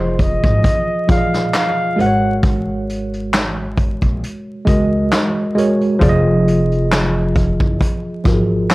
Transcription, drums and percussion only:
0.19 kick loud
0.19 closed hi-hat medium
0.44 kick medium
0.44 closed hi-hat soft
0.64 kick loud
0.64 closed hi-hat medium
1.09 kick loud
1.09 closed hi-hat medium
1.34 snare soft
1.34 closed hi-hat soft
1.53 snare loud
1.53 clap medium
1.53 closed hi-hat medium
2.00 closed hi-hat medium
2.43 kick loud
2.43 closed hi-hat medium
2.89 closed hi-hat medium
3.13 closed hi-hat soft
3.33 snare loud
3.33 clap medium
3.33 closed hi-hat medium
3.77 kick medium
3.77 closed hi-hat medium
4.02 kick medium
4.02 closed hi-hat soft
4.24 closed hi-hat medium
4.67 kick loud
4.67 closed hi-hat medium
5.11 snare medium
5.11 clap medium
5.11 closed hi-hat medium
5.58 closed hi-hat medium
5.81 closed hi-hat soft
6.01 kick loud
6.01 closed hi-hat medium
6.48 closed hi-hat medium
6.72 closed hi-hat soft
6.92 snare loud
6.92 clap medium
6.92 closed hi-hat medium
7.36 kick loud
7.36 closed hi-hat medium
7.60 kick medium
7.81 kick medium
7.81 closed hi-hat medium
8.25 kick loud
8.25 closed hi-hat medium
8.69 snare loud
8.69 clap medium
8.69 closed hi-hat medium

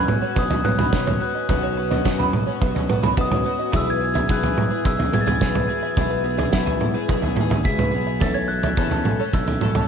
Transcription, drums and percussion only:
0.08 mid tom medium
0.36 kick loud
0.51 floor tom medium
0.65 mid tom medium
0.79 floor tom medium
0.79 mid tom medium
0.93 kick loud
0.93 snare medium
1.07 floor tom medium
1.07 mid tom medium
1.49 kick loud
1.49 floor tom medium
1.92 floor tom medium
2.05 kick loud
2.05 snare medium
2.20 floor tom medium
2.33 mid tom medium
2.62 kick loud
2.76 floor tom medium
2.90 mid tom medium
3.03 floor tom medium
3.03 mid tom medium
3.17 kick loud
3.32 floor tom medium
3.32 mid tom medium
3.73 kick medium
3.73 floor tom medium
4.15 floor tom medium
4.29 kick loud
4.43 floor tom medium
4.58 mid tom medium
4.85 kick loud
5.00 floor tom medium
5.14 mid tom medium
5.28 floor tom medium
5.28 mid tom medium
5.41 kick loud
5.41 snare medium
5.55 floor tom medium
5.55 mid tom medium
5.97 kick loud
5.97 floor tom medium
6.39 floor tom medium
6.53 kick loud
6.53 snare medium
6.67 floor tom medium
6.81 mid tom medium
7.09 kick loud
7.23 floor tom medium
7.37 mid tom medium
7.51 floor tom medium
7.51 mid tom medium
7.65 kick loud
7.79 floor tom medium
7.79 mid tom medium
8.21 kick loud
8.21 floor tom medium
8.63 floor tom medium
8.77 kick loud
8.91 floor tom medium
9.05 mid tom medium
9.33 kick loud
9.48 floor tom medium
9.61 mid tom medium
9.75 floor tom medium
9.75 mid tom medium

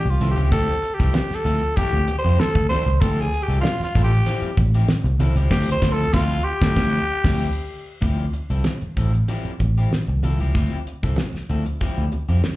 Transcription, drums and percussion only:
0.06 closed hi-hat soft
0.06 high conga soft
0.21 closed hi-hat medium
0.21 high conga medium
0.37 closed hi-hat medium
0.52 kick loud
0.52 closed hi-hat loud
0.52 muted conga soft
0.68 closed hi-hat soft
0.84 closed hi-hat medium
1.00 kick medium
1.00 snare soft
1.00 closed hi-hat medium
1.14 snare loud
1.14 high conga loud
1.31 snare soft
1.31 closed hi-hat soft
1.46 closed hi-hat medium
1.63 closed hi-hat medium
1.77 kick loud
1.77 closed hi-hat medium
1.77 muted conga medium
1.94 closed hi-hat soft
2.08 closed hi-hat medium
2.08 muted conga medium
2.24 closed hi-hat medium
2.40 snare loud
2.40 high conga medium
2.55 kick loud
2.55 closed hi-hat soft
2.55 high conga soft
2.71 closed hi-hat medium
2.71 high conga medium
2.87 closed hi-hat medium
3.02 kick loud
3.02 closed hi-hat medium
3.02 muted conga soft
3.34 closed hi-hat medium
3.50 closed hi-hat medium
3.63 snare loud
3.63 high conga loud
3.81 snare soft
3.81 closed hi-hat soft
3.95 kick loud
3.95 closed hi-hat medium
4.13 closed hi-hat medium
4.26 closed hi-hat medium
4.26 muted conga medium
4.43 closed hi-hat soft
4.57 kick medium
4.57 closed hi-hat medium
4.57 muted conga medium
4.74 closed hi-hat medium
4.89 snare loud
4.89 high conga medium
5.05 closed hi-hat soft
5.05 high conga soft
5.20 closed hi-hat medium
5.20 high conga medium
5.36 closed hi-hat medium
5.51 kick loud
5.51 snare loud
5.51 crash loud
5.82 kick loud
5.82 snare loud
6.14 kick loud
6.14 snare loud
6.62 kick loud
6.62 snare loud
6.76 kick loud
6.76 snare loud
7.24 kick loud
7.24 snare loud
7.24 crash medium
8.02 kick loud
8.02 closed hi-hat medium
8.02 muted conga soft
8.34 closed hi-hat medium
8.50 closed hi-hat soft
8.64 snare loud
8.64 high conga medium
8.82 closed hi-hat soft
8.97 kick medium
8.97 closed hi-hat medium
9.14 closed hi-hat medium
9.28 closed hi-hat medium
9.28 muted conga medium
9.45 closed hi-hat soft
9.59 kick medium
9.59 closed hi-hat medium
9.59 muted conga medium
9.77 closed hi-hat soft
9.91 snare medium
9.91 high conga medium
10.23 closed hi-hat medium
10.23 high conga medium
10.40 closed hi-hat soft
10.54 kick loud
10.54 closed hi-hat medium
10.54 muted conga soft
10.87 closed hi-hat medium
11.03 kick medium
11.03 snare soft
11.03 closed hi-hat soft
11.16 snare loud
11.16 high conga medium
11.35 snare soft
11.49 closed hi-hat medium
11.66 closed hi-hat medium
11.81 kick medium
11.81 closed hi-hat medium
11.81 muted conga medium
11.98 closed hi-hat soft
12.12 closed hi-hat medium
12.12 muted conga soft
12.29 closed hi-hat soft
12.44 snare loud
12.44 high conga medium

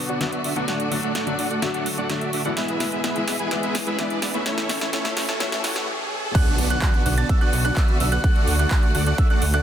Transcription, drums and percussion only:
0.21 snare medium
0.21 closed hi-hat medium
0.33 closed hi-hat soft
0.44 open hi-hat loud
0.56 closed hi-hat soft
0.68 snare medium
0.68 closed hi-hat medium
0.80 closed hi-hat soft
0.92 open hi-hat loud
1.03 closed hi-hat soft
1.15 snare medium
1.15 closed hi-hat medium
1.27 closed hi-hat soft
1.39 open hi-hat loud
1.51 closed hi-hat soft
1.62 snare medium
1.62 closed hi-hat medium
1.74 closed hi-hat soft
1.86 open hi-hat loud
1.98 closed hi-hat soft
2.10 snare medium
2.10 closed hi-hat medium
2.21 closed hi-hat soft
2.33 open hi-hat loud
2.45 closed hi-hat soft
2.57 snare medium
2.57 closed hi-hat medium
2.68 closed hi-hat soft
2.80 snare medium
2.80 open hi-hat loud
2.92 closed hi-hat soft
3.04 snare medium
3.04 closed hi-hat medium
3.16 closed hi-hat soft
3.28 snare medium
3.28 open hi-hat loud
3.39 closed hi-hat soft
3.51 snare medium
3.51 closed hi-hat medium
3.63 closed hi-hat soft
3.75 snare medium
3.75 open hi-hat loud
3.87 closed hi-hat soft
3.99 snare medium
3.99 closed hi-hat medium
4.10 closed hi-hat soft
4.22 snare medium
4.22 open hi-hat loud
4.34 closed hi-hat soft
4.46 snare medium
4.46 closed hi-hat medium
4.58 snare medium
4.58 closed hi-hat soft
4.69 snare medium
4.69 open hi-hat loud
4.81 snare medium
4.81 closed hi-hat soft
4.93 snare loud
4.93 closed hi-hat medium
5.05 snare medium
5.05 closed hi-hat soft
5.17 snare loud
5.17 open hi-hat loud
5.29 snare medium
5.40 snare loud
5.40 closed hi-hat medium
5.52 snare medium
5.52 closed hi-hat soft
5.64 snare loud
5.64 open hi-hat loud
5.76 snare medium
5.76 closed hi-hat soft
6.35 kick loud
6.35 closed hi-hat medium
6.35 crash loud
6.47 closed hi-hat soft
6.58 open hi-hat loud
6.70 closed hi-hat medium
6.82 kick loud
6.82 clap loud
6.82 closed hi-hat medium
6.94 closed hi-hat soft
7.06 open hi-hat loud
7.18 closed hi-hat medium
7.29 kick loud
7.29 closed hi-hat medium
7.41 closed hi-hat soft
7.53 open hi-hat loud
7.65 closed hi-hat medium
7.77 kick loud
7.77 clap loud
7.77 closed hi-hat medium
7.88 closed hi-hat soft
8.00 open hi-hat loud
8.12 closed hi-hat medium
8.24 kick loud
8.24 closed hi-hat medium
8.36 closed hi-hat soft
8.48 open hi-hat loud
8.59 closed hi-hat medium
8.71 kick loud
8.71 clap loud
8.71 closed hi-hat medium
8.83 closed hi-hat soft
8.95 open hi-hat loud
9.06 closed hi-hat medium
9.18 kick loud
9.18 closed hi-hat medium
9.30 closed hi-hat soft
9.42 open hi-hat loud
9.54 closed hi-hat medium

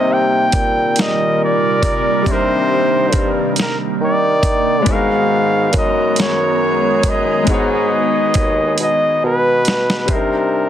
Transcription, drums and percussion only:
0.52 kick medium
0.52 closed hi-hat medium
0.96 snare loud
0.96 closed hi-hat medium
1.83 kick medium
1.83 closed hi-hat medium
2.26 kick loud
2.26 closed hi-hat medium
3.13 kick medium
3.13 closed hi-hat medium
3.56 snare loud
3.56 closed hi-hat medium
4.43 kick medium
4.43 closed hi-hat medium
4.86 kick loud
4.86 closed hi-hat medium
5.73 kick loud
5.73 closed hi-hat medium
6.16 snare loud
6.16 closed hi-hat medium
7.03 kick medium
7.03 closed hi-hat medium
7.47 kick loud
7.47 closed hi-hat medium
8.34 kick loud
8.34 closed hi-hat medium
8.78 closed hi-hat medium
9.65 snare medium
9.65 closed hi-hat medium
9.90 snare medium
10.08 kick loud
10.08 closed hi-hat medium

